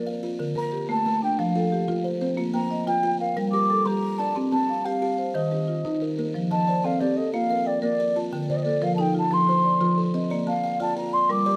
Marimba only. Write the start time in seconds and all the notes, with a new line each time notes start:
Already playing: A#4
0.39 D3
0.55 A#4
0.72 G4
0.89 A3
1.22 D4
1.39 F3
1.56 A4
1.72 G4
1.88 F4
2.21 C5
2.37 A#3
2.54 G5
2.71 D#5
2.87 F4
3.03 G5
3.21 A#4
3.37 G3
3.54 A#4
3.70 A4
3.87 G4
4.19 D5
4.36 C4
4.52 A5
4.69 F5
4.86 G4
5.02 A5
5.18 C5
5.34 D#3
5.52 G4
5.68 F4
5.85 D#4
6.18 A#4
6.34 F3
6.51 D#5
6.68 C5
6.84 C4 D5
7.01 G4
7.17 A4
7.34 A#3
7.50 A#4
7.65 G5
7.82 A#4
7.98 A#4
8.16 A5
8.33 D3
8.49 C5
8.65 A4
8.82 F3 A#4
8.98 D#4
9.15 F4
9.31 F3
9.47 F4
9.64 D5
9.81 F4
10.14 D#5
10.31 A#3
10.47 A5
10.63 F5
10.80 F4 G5
11.13 D5
11.29 G3
11.47 G4